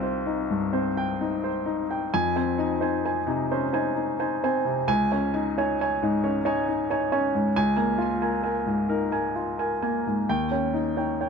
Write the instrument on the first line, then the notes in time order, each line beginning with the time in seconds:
grand piano
Already playing: C2 C4 D#4 F4 C5
0.03 C5
0.26 D#4
0.50 G2
0.73 C4 C5
0.97 G5
1.21 D#4
1.44 C5
1.66 D#4
1.91 G5
2.14 F2 G#5
2.36 C4 C5 G#5
2.58 D#4
2.81 D#4 C5 G#5
3.05 C5 G#5
3.27 C3 D#4
3.52 C#4 C5
3.73 D#4 C5 G#5
3.95 D#4
4.19 D#4 C5 G#5
4.44 C4 C5 G#5
4.65 C3
4.88 C#2 G#5
5.12 C#4 C#5 G#5
5.34 D#4
5.58 D#4 C#5 G#5
5.81 C#5 G#5
6.02 G#2 D#4
6.24 C#4 C#5
6.45 D#4 C#5 G#5
6.68 D#4
6.90 D#4 C#5 G#5
7.12 C#4 C#5 G#5
7.35 G#2
7.56 C#2 G#5
7.77 A#3 A#4 G#5
7.98 F4
8.21 A#4 G#5
8.43 A#4 G#5
8.66 G#2
8.89 D#4 A#4
9.11 A#4 G#5
9.36 F4
9.59 A#4 G#5
9.82 A#3 A#4 G#5
10.07 G#2
10.29 D#2 G5
10.51 C#4 C#5 G5
10.74 D#4
10.97 D#4 C#5 G5
11.21 C#5 G5